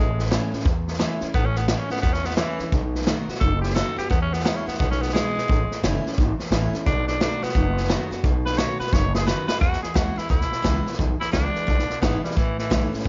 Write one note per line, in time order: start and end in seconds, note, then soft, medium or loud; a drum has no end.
0.00 0.36 A1 loud
0.00 0.63 A2 medium
0.00 0.28 G#3 loud
0.19 snare soft
0.25 snare soft
0.30 0.51 E3 medium
0.30 0.52 A3 medium
0.30 0.52 C#4 loud
0.30 0.51 E4 medium
0.30 snare loud
0.30 hi-hat pedal medium
0.52 0.65 C#4 medium
0.52 0.65 E4 medium
0.52 muted upright bass stroke medium
0.52 snare soft
0.60 snare soft
0.65 1.04 E2 medium
0.65 1.32 E2 medium
0.65 kick loud
0.65 snare soft
0.88 snare soft
0.93 snare soft
0.98 1.20 E3 medium
0.98 1.20 A3 medium
0.98 1.21 C#4 medium
0.98 1.20 E4 medium
0.98 snare loud
0.98 hi-hat pedal medium
1.21 1.34 C#4 medium
1.21 1.34 E4 medium
1.21 muted upright bass stroke medium
1.21 snare soft
1.34 1.73 A1 loud
1.34 2.01 A2 medium
1.34 1.47 B3 loud
1.34 kick loud
1.34 snare soft
1.46 1.59 C#4 loud
1.55 1.68 B3 medium
1.55 snare soft
1.68 1.89 E3 medium
1.68 1.90 A3 medium
1.68 1.81 B3 medium
1.68 1.90 C#4 medium
1.68 1.89 E4 loud
1.68 snare loud
1.68 hi-hat pedal medium
1.79 1.91 C#4 medium
1.90 2.01 B3 medium
1.90 2.04 C#4 medium
1.90 2.03 E4 medium
1.90 muted upright bass stroke medium
1.90 snare soft
1.96 snare soft
2.02 2.43 E2 medium
2.02 2.70 E2 loud
2.02 2.15 B3 medium
2.02 kick loud
2.02 snare soft
2.13 2.28 C#4 medium
2.13 snare soft
2.24 2.36 B3 medium
2.24 snare soft
2.30 snare soft
2.37 2.71 E3 medium
2.37 2.58 E3 medium
2.37 2.59 A3 medium
2.37 2.59 C#4 medium
2.37 2.58 E4 loud
2.37 snare loud
2.37 hi-hat pedal medium
2.59 2.72 C#4 medium
2.59 2.72 E4 medium
2.59 muted upright bass stroke medium
2.59 snare soft
2.72 3.12 B1 medium
2.72 3.39 B2 medium
2.72 kick loud
2.72 snare soft
2.95 snare soft
3.01 snare soft
3.07 3.28 D#3 medium
3.07 3.28 A3 medium
3.07 3.28 B3 medium
3.07 3.28 F#4 loud
3.07 snare loud
3.07 hi-hat pedal medium
3.28 3.42 B3 soft
3.28 3.41 F#4 medium
3.28 muted upright bass stroke medium
3.28 snare soft
3.35 snare soft
3.40 3.80 F#1 medium
3.40 4.08 F#2 loud
3.40 3.61 A4 loud
3.40 kick loud
3.40 snare soft
3.62 3.75 G4 medium
3.62 snare soft
3.70 snare soft
3.74 3.96 D#3 medium
3.74 3.96 A3 loud
3.74 3.96 B3 medium
3.74 3.95 F#4 loud
3.74 3.97 A4 medium
3.74 snare loud
3.74 hi-hat pedal medium
3.96 4.10 B3 medium
3.96 4.09 F#4 medium
3.96 4.09 G4 medium
3.96 muted upright bass stroke medium
3.96 snare soft
4.10 4.76 E2 medium
4.10 4.50 E2 medium
4.10 4.21 B3 loud
4.10 kick loud
4.10 snare soft
4.22 4.35 C#4 medium
4.33 4.44 B3 medium
4.33 snare soft
4.39 snare soft
4.44 4.65 E3 medium
4.44 4.66 G#3 medium
4.44 4.58 B3 medium
4.44 4.66 B3 medium
4.44 4.65 E4 medium
4.44 snare loud
4.44 hi-hat pedal medium
4.56 4.67 C#4 medium
4.66 4.79 B3 medium
4.66 4.78 B3 medium
4.66 4.79 E4 medium
4.66 muted upright bass stroke medium
4.66 snare soft
4.74 snare soft
4.78 5.19 B1 medium
4.78 5.46 B2 medium
4.78 4.90 B3 medium
4.78 kick loud
4.78 snare soft
4.91 5.03 C#4 medium
4.91 snare soft
5.02 5.13 B3 medium
5.02 snare soft
5.09 snare soft
5.13 5.34 E3 medium
5.13 5.80 G#3 loud
5.13 5.35 G#3 medium
5.13 5.35 B3 loud
5.13 5.34 E4 medium
5.13 snare loud
5.13 hi-hat pedal medium
5.35 5.48 B3 medium
5.35 5.48 E4 medium
5.35 muted upright bass stroke medium
5.35 snare soft
5.48 5.64 A1 loud
5.48 6.15 A2 medium
5.48 kick loud
5.48 snare soft
5.70 muted upright bass stroke medium
5.70 snare soft
5.83 6.01 F#1 medium
5.83 6.04 E3 medium
5.83 6.04 A3 medium
5.83 6.04 C#4 medium
5.83 6.03 E4 loud
5.83 snare loud
5.83 hi-hat pedal medium
6.04 6.18 C#4 medium
6.04 6.17 E4 medium
6.04 muted upright bass stroke medium
6.04 snare soft
6.12 snare soft
6.18 6.36 G#1 medium
6.18 6.84 E2 loud
6.18 kick loud
6.18 snare soft
6.39 snare soft
6.46 snare soft
6.51 6.69 A1 medium
6.51 6.73 E3 medium
6.51 6.73 A3 medium
6.51 6.73 C#4 loud
6.51 6.72 E4 loud
6.51 snare loud
6.51 hi-hat pedal medium
6.72 6.87 C#4 medium
6.72 6.86 E4 medium
6.72 muted upright bass stroke medium
6.72 snare soft
6.86 7.26 B1 loud
6.86 7.53 B2 loud
6.86 7.07 D4 loud
6.86 kick loud
6.86 snare soft
7.07 7.20 D4 medium
7.07 snare soft
7.20 7.41 D#3 medium
7.20 7.42 A3 medium
7.20 7.42 B3 medium
7.20 7.45 D4 medium
7.20 7.41 F#4 medium
7.20 snare loud
7.20 hi-hat pedal medium
7.42 8.10 B3 loud
7.42 7.55 B3 medium
7.42 7.55 F#4 medium
7.42 muted upright bass stroke medium
7.42 snare soft
7.49 snare soft
7.55 7.94 F#1 medium
7.55 8.21 F#2 loud
7.55 kick loud
7.55 snare soft
7.77 snare soft
7.84 snare soft
7.88 8.10 D#3 medium
7.88 8.10 A3 medium
7.88 8.11 B3 loud
7.88 8.10 F#4 loud
7.88 snare loud
7.88 hi-hat pedal medium
8.10 8.24 B3 soft
8.10 8.23 F#4 medium
8.10 muted upright bass stroke medium
8.10 snare soft
8.23 8.63 B1 medium
8.23 8.90 B2 medium
8.23 kick loud
8.23 snare soft
8.46 8.59 B4 loud
8.46 snare soft
8.53 snare soft
8.58 8.79 D#3 medium
8.58 8.79 A3 medium
8.58 8.80 B3 loud
8.58 8.79 F#4 medium
8.58 8.79 C#5 medium
8.58 snare loud
8.58 hi-hat pedal medium
8.79 8.93 B3 medium
8.79 8.92 F#4 medium
8.79 8.95 B4 medium
8.79 muted upright bass stroke medium
8.79 snare soft
8.87 snare soft
8.93 9.32 F#1 medium
8.93 9.59 F#2 loud
8.93 9.14 C#5 medium
8.93 kick loud
8.93 snare medium
9.15 9.26 G#4 medium
9.15 snare medium
9.26 9.47 D#3 medium
9.26 9.48 A3 medium
9.26 9.48 B3 medium
9.26 9.46 F#4 medium
9.26 9.47 B4 medium
9.26 snare loud
9.26 hi-hat pedal medium
9.47 9.61 B3 medium
9.47 9.60 F#4 medium
9.47 9.60 B4 loud
9.47 muted upright bass stroke medium
9.47 snare loud
9.60 10.27 E2 medium
9.60 9.81 E2 medium
9.60 9.82 F#4 loud
9.60 kick loud
9.60 snare soft
9.73 snare soft
9.82 9.97 G#4 medium
9.82 muted upright bass stroke medium
9.82 snare soft
9.94 10.16 D#2 medium
9.94 10.16 E3 medium
9.94 10.16 G#3 medium
9.94 10.17 B3 medium
9.94 10.15 E4 medium
9.94 10.20 F#4 medium
9.94 kick medium
9.94 snare loud
9.94 hi-hat pedal medium
10.16 10.30 B3 medium
10.16 10.29 E4 medium
10.16 10.30 E4 medium
10.16 muted upright bass stroke medium
10.16 snare soft
10.29 10.51 D2 medium
10.29 10.96 B2 medium
10.29 10.97 E4 medium
10.29 kick loud
10.29 snare soft
10.41 snare soft
10.51 muted upright bass stroke medium
10.51 snare soft
10.62 10.85 C#2 medium
10.62 10.84 E3 medium
10.62 10.84 G#3 medium
10.62 10.85 B3 medium
10.62 10.83 E4 loud
10.62 kick medium
10.62 snare loud
10.62 hi-hat pedal medium
10.84 10.99 B3 medium
10.84 10.98 E4 medium
10.84 snare soft
10.93 snare soft
10.98 11.19 B1 medium
10.98 11.65 E2 medium
10.98 kick loud
10.98 snare soft
11.20 11.32 E4 loud
11.20 snare soft
11.32 11.54 C#2 medium
11.32 11.66 E3 medium
11.32 11.66 G#3 medium
11.32 11.66 B3 loud
11.32 12.00 D4 loud
11.32 11.67 E4 medium
11.32 kick medium
11.32 snare loud
11.32 hi-hat pedal medium
11.54 muted upright bass stroke medium
11.54 snare soft
11.67 11.88 B1 medium
11.67 12.34 B2 loud
11.67 kick loud
11.67 snare soft
11.79 snare soft
11.89 muted upright bass stroke medium
11.89 snare soft
12.01 12.23 G#1 medium
12.01 12.35 E3 medium
12.01 12.36 G#3 medium
12.01 12.23 B3 medium
12.01 12.36 B3 medium
12.01 12.36 E4 medium
12.01 kick medium
12.01 snare loud
12.01 hi-hat pedal medium
12.23 12.38 G3 medium
12.23 muted upright bass stroke medium
12.23 snare soft
12.31 snare soft
12.36 12.57 A1 medium
12.36 13.03 A2 loud
12.36 12.58 E3 medium
12.36 kick loud
12.36 snare soft
12.59 12.92 E3 medium
12.59 snare soft
12.70 12.92 B1 medium
12.70 12.91 E3 medium
12.70 12.91 A3 medium
12.70 12.92 C#4 loud
12.70 12.90 E4 medium
12.70 kick medium
12.70 snare loud
12.70 hi-hat pedal medium
12.91 13.05 C#4 medium
12.91 13.04 E4 medium
12.91 muted upright bass stroke medium
12.91 snare soft
12.99 snare soft
13.04 13.08 C#2 medium
13.04 13.08 E2 loud